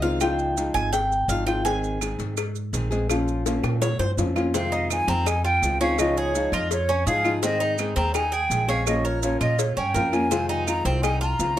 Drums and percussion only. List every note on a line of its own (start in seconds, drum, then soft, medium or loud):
0.03 cowbell medium
0.03 maracas soft
0.21 cowbell loud
0.21 claves medium
0.21 maracas medium
0.39 maracas soft
0.57 cowbell medium
0.57 maracas medium
0.75 cowbell medium
0.75 claves medium
0.75 maracas soft
0.93 cowbell loud
0.93 maracas medium
1.12 maracas soft
1.29 cowbell medium
1.29 maracas medium
1.47 cowbell medium
1.47 claves medium
1.47 maracas soft
1.66 cowbell loud
1.66 maracas medium
1.84 maracas soft
2.01 cowbell medium
2.01 claves medium
2.01 maracas medium
2.19 cowbell medium
2.19 maracas soft
2.37 cowbell loud
2.37 claves medium
2.37 maracas medium
2.56 maracas soft
2.74 cowbell medium
2.74 maracas medium
2.92 cowbell medium
2.92 maracas soft
3.10 cowbell loud
3.10 claves medium
3.10 maracas medium
3.28 maracas soft
3.46 cowbell medium
3.46 high bongo loud
3.46 maracas medium
3.64 cowbell medium
3.64 high bongo medium
3.64 claves medium
3.64 maracas soft
3.82 cowbell loud
3.82 low bongo loud
3.82 maracas medium
4.00 low bongo medium
4.00 maracas soft
4.18 cowbell medium
4.18 low bongo medium
4.18 maracas medium
4.36 cowbell medium
4.36 low bongo medium
4.36 claves medium
4.36 maracas soft
4.54 cowbell loud
4.54 maracas medium
4.73 maracas soft
4.90 cowbell medium
4.90 claves medium
4.90 maracas medium
5.08 cowbell medium
5.08 maracas soft
5.27 cowbell loud
5.27 claves medium
5.27 maracas medium
5.45 maracas soft
5.63 cowbell medium
5.63 maracas medium
5.81 cowbell medium
5.81 maracas soft
5.99 cowbell loud
5.99 claves medium
5.99 maracas medium
6.17 maracas soft
6.35 cowbell medium
6.35 maracas medium
6.53 cowbell medium
6.53 claves medium
6.53 maracas soft
6.71 cowbell loud
6.71 maracas medium
6.89 maracas soft
7.07 cowbell medium
7.07 maracas medium
7.24 cowbell medium
7.24 claves medium
7.24 maracas soft
7.43 cowbell loud
7.43 maracas medium
7.61 maracas soft
7.78 cowbell medium
7.78 claves medium
7.78 maracas medium
7.97 cowbell medium
7.97 maracas soft
8.15 cowbell loud
8.15 claves medium
8.15 maracas medium
8.33 maracas soft
8.51 cowbell medium
8.51 maracas medium
8.69 cowbell medium
8.69 maracas soft
8.87 cowbell loud
8.87 claves medium
8.87 maracas medium
9.05 maracas soft
9.23 cowbell medium
9.23 maracas medium
9.41 cowbell medium
9.41 claves medium
9.41 maracas soft
9.59 cowbell loud
9.59 maracas medium
9.77 maracas soft
9.95 cowbell medium
9.95 maracas medium
10.13 cowbell medium
10.13 claves medium
10.13 maracas soft
10.32 cowbell loud
10.32 maracas medium
10.50 maracas soft
10.67 cowbell medium
10.67 claves medium
10.67 maracas medium
10.85 cowbell medium
10.85 maracas soft
11.04 cowbell loud
11.04 claves medium
11.04 maracas medium
11.22 maracas soft
11.40 cowbell medium
11.40 maracas medium